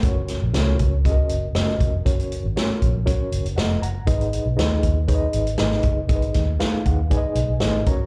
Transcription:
<<
  \new Staff \with { instrumentName = "Reed electric piano" } { \time 4/4 \key fis \major \tempo 4 = 119 << { r1 | r2. <dis'' fis''>8 <fis'' ais''>8~ | <fis'' ais''>8 r2. r8 | r4. fis''8 gis''4 gis''8 ais''8 | } \\ { <cis' fis' ais' cis''>4 <cis' fis' ais' bis' cis''>4 <cis' fis' gis' ais' dis''>4 <cis' fis' a' ais' dis''>4 | <cis' fis' ais' cis''>4 <cis' fis' a' ais' cis''>4 <cis' fis' ais' cis''>4 r4 | <dis' gis' b' dis''>4 <dis' gis' b' dis''>4 <dis' gis' b' cis'' dis''>4 <dis' gis' b' dis''>4 | <dis' gis' ais' b' dis''>4 <dis' gis' b' eis''>4 <dis' gis' b' d'' dis''>4 <dis' gis' b' dis''>8 <cis' fis' ais' cis''>8 | } >> }
  \new Staff \with { instrumentName = "Reed electric piano" } { \clef bass \time 4/4 \key fis \major r1 | r1 | gis,4. r2 r8 | gis,4. r2 r8 | }
  \new Staff \with { instrumentName = "Fingered electric bass" } { \clef bass \time 4/4 \key fis \major fis,,8. ais,,16 cis,8 cis,4 fis,,8 fis,,8 eis,,8 | fis,,8. gis,,16 r8 ais,,8. r16 fis,,16 fis,,16 eis,,8 fis,,8 | gis,,8. b,,16 dis,8 dis,4 gis,,8 gis,,8 fis,,8 | gis,,8 dis,8 r8 dis,8. r16 b,,16 b,,16 gis,,8 fis,,8 | }
  \new DrumStaff \with { instrumentName = "Drums" } \drummode { \time 4/4 <hh bd>8 <hh sn>8 <hh sn>8 <hh bd>8 <hh bd>8 hh8 <hh sn>16 sn16 <hh bd>8 | <hh bd>16 hh16 hh8 <hh sn>8 <hh bd>8 <hh bd>8 hh16 hh16 <hh sn>8 hh8 | <hh bd>16 hh16 hh8 <hh sn>8 <hh bd>8 <hh bd>8 hh16 hh16 <hh sn>16 sn16 <hh bd>8 | <hh bd>16 hh16 <hh bd sn>8 <hh sn>8 <hh bd>8 <hh bd>8 hh8 <hh sn>8 <hh bd>8 | }
>>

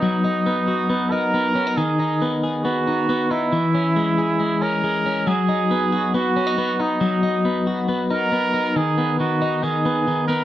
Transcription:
<<
  \new Staff \with { instrumentName = "Trumpet" } { \time 4/4 \key b \major \tempo 4 = 137 dis'2~ dis'8 ais'4. | gis'4. r8 fis'4. e'8~ | e'2~ e'8 ais'4. | gis'2 fis'4. dis'8~ |
dis'2 r8 ais'4. | gis'4 fis'4 gis'4. ais'8 | }
  \new Staff \with { instrumentName = "Clean electric guitar" } { \time 4/4 \key b \major <fis b dis' fis'>8 dis'8 b8 fis'8 b8 dis'8 b8 cis'16 dis'16 | dis8 dis'8 b8 gis'8 b8 dis'8 b8 dis'8 | e8 cis'8 gis8 gis'8 gis8 cis'8 gis8 cis'8 | fis8 dis'8 b8 fis'8 b8 cis'16 dis'16 b8 dis'8 |
fis8 dis'8 b8 fis'8 b8 dis'8 b8 dis'8 | dis8 b8 dis8 dis'8 dis8 b8 dis8 b8 | }
>>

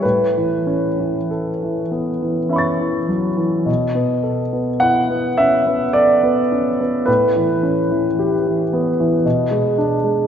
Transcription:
<<
  \new Staff \with { instrumentName = "Grand piano" } { \time 3/4 \key a \major \tempo 4 = 53 << { r2 <e'' b'' cis''' a'''>4 | r2. | r2. | } \\ { b'2~ b'8 r8 | r4 fis''8 e''8 d''4 | b'2~ b'8 r8 | } >> }
  \new Staff \with { instrumentName = "Grand piano" } { \time 3/4 \key a \major a,16 e16 cis'16 e16 a'16 e16 b16 e16 cis'16 e16 fis16 e16 | b,16 b16 a'16 b16 e'16 b16 cis'16 b16 a'16 b16 cis'16 b16 | a,16 e16 cis'16 e16 g'16 e16 b16 e16 b,16 gis16 d'16 gis16 | }
>>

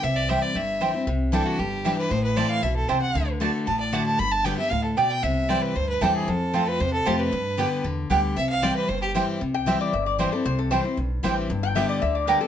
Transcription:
<<
  \new Staff \with { instrumentName = "Fiddle" } { \time 4/4 \key c \major \tempo 4 = 230 e''8 d''8 e''8 d''8 e''4.~ e''16 r16 | r4 a'8 fis'8 g'4. b'8 | c''8 b'8 d''8 f''8 e''8 a'8 c''8 fis''8~ | fis''8 r4. a''8 d''8 fis''8 a''8 |
b''8 a''8 g''8 e''8 f''8 a'8 d''8 g''8 | e''4 d''8 b'8 c''8 b'8 a'8 aes'8 | a'4. b'8 c''8 a'8 g'8 b'8~ | b'2 r2 |
e''8 f''8 d''8 b'8 c''8 g'8 r4 | r1 | r1 | r1 | }
  \new Staff \with { instrumentName = "Resonator guitar played with a steel bar" } { \time 4/4 \key c \major r1 | r1 | r1 | r1 |
r1 | r1 | r1 | r1 |
r1 | r8 g''8 e''8 d''8 e''8 d''8 c''8 a'8 | c''8 a'8 c''4 r2 | r8 g''8 e''8 d''8 e''8 d''8 bes'8 a'8 | }
  \new Staff \with { instrumentName = "Mandolin" } { \time 4/4 \key c \major r4 <c' e' c'' g''>8 r4. <c' e' c'' g''>8 r8 | r4 <c' e' d'' g''>8 r4. <c' e' d'' g''>8 r8 | r4 <c' e' c'' a''>8 r4. <c' e' c'' a''>8 r8 | r4 <a fis' d'' a''>8 r4. <a fis' d'' a''>8 r8 |
r4 <b g' d'' g''>8 r4. <b g' d'' g''>8 r8 | r4 <c' e' c'' g''>8 r4. <c' e' c'' g''>8 r8 | r4 <c' f' c'' a''>8 r4. <c' f' c'' a''>8 r8 | r4 <b g' d'' g''>8 r4. <b g' d'' g''>8 r8 |
r4 <c' e' c'' g''>8 r4. <c' e' c'' g''>8 r8 | r4 <c' e' c'' g''>8 r4. <c' e' c'' g''>8 r8 | r4 <c' e' c'' g''>8 r4. <c' e' c'' g''>8 r8 | r4 <b g' d'' g''>8 r4. <b g' d'' g''>8 r8 | }
  \new Staff \with { instrumentName = "Steel-string acoustic guitar" } { \clef bass \time 4/4 \key c \major << { r4 <e g c' e'>4 r4 <e g c' e'>8 <c' e'>8 | r4 <e g d' e'>4 r4 <e g d' e'>4 | r4 <e a c' e'>4 r2 | r4 <d a d' fis'>4 r4 <d a d' fis'>4 |
r4 <d g b g'>8 <b g'>8 r2 | r4 <e g c' e'>4 r4 <e g c' e'>4 | r4 <f a c' f'>4 r4 <f a c' f'>4 | r4 <d g b g'>4 r4 <d g b g'>4 |
r4 <e g c' e'>4 r4 <e g c' e'>4 | r4 <e g c' e'>4 r4 <e g c' e'>8 <c' e'>8 | r4 <e g c' e'>8 <c' e'>8 r4 <e g c' e'>4 | r4 <d g b g'>4 r4 <d g b g'>8 <b g'>8 | } \\ { c2 g,2 | c2 g,2 | a,2 b,4 c4 | d2 a,2 |
g,2 a,4 b,4 | c2 g,2 | f,2 c2 | g,2 d2 |
c2 g,2 | c2 g,2 | c2 g,2 | g,2 d2 | } >> }
  \new Staff \with { instrumentName = "Upright bass" } { \clef bass \time 4/4 \key c \major c,2 g,,2 | c,2 g,,2 | a,,2 b,,4 c,4 | d,2 a,,2 |
g,,2 d,2 | c,2 d,4 e,4 | f,2 e,4 f,4 | g,2 e,4 d,4 |
c,2 g,,2 | c,2 g,,2 | c,2 b,,4 a,,4 | g,,2 d,2 | }
>>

